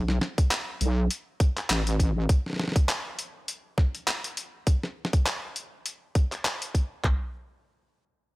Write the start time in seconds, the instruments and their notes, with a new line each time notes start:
Already playing: wobble bass B1
0.08 snare
0.21 snare
0.38 kick, closed hi-hat
0.51 clap, closed hi-hat
0.81 wobble bass B1, closed hi-hat
1.11 closed hi-hat
1.40 kick, closed hi-hat
1.57 clap, closed hi-hat
1.70 wobble bass A1, clap, closed hi-hat
1.87 closed hi-hat
2.00 kick, closed hi-hat
2.29 kick, closed hi-hat
2.46 snare
2.50 snare
2.53 snare
2.56 snare
2.60 snare
2.64 snare
2.68 snare
2.72 kick, snare
2.76 closed hi-hat
2.89 clap, closed hi-hat
3.19 closed hi-hat
3.48 closed hi-hat
3.78 kick, snare
3.95 closed hi-hat
4.08 clap, closed hi-hat
4.24 closed hi-hat
4.37 closed hi-hat
4.67 kick, closed hi-hat
4.84 snare
5.05 snare
5.13 kick, closed hi-hat
5.26 clap, closed hi-hat
5.56 closed hi-hat
5.86 closed hi-hat
6.15 kick, closed hi-hat
6.32 clap, closed hi-hat
6.45 clap, closed hi-hat
6.62 closed hi-hat
6.75 kick, closed hi-hat
7.04 kick, clap, floor tom